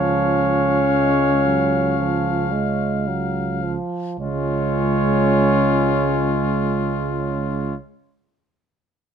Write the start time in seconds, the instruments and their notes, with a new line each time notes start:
Already playing: tuba C#2, euphonium F3, french horn C#4, flugelhorn C#5, trumpet F5
0.92 euphonium G#3
1.45 euphonium F#3
1.99 euphonium F3
2.53 euphonium G#3
3.08 euphonium F#3
3.63 euphonium F3
4.19 tuba C#2, euphonium G#3, french horn C#4, trumpet F4, flugelhorn C#5